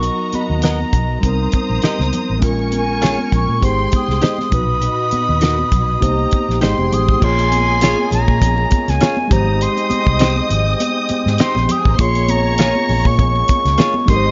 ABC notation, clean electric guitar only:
X:1
M:4/4
L:1/16
Q:"Swing 16ths" 1/4=100
K:Bbdor
V:1 name="Clean electric guitar"
z4 [=B,^F^A^d] z6 z [EG_Be] z3 | z4 [DFAd] z6 z [EGce] z3 | z4 [^D^F^A^d] z6 z [EGce] z3 | z4 [DFAd] z6 z [DFAd] z3 |
z4 [CEGc] z6 z [CEGc] z3 | z4 [B,FAd] z6 z [B,FAd] z3 |]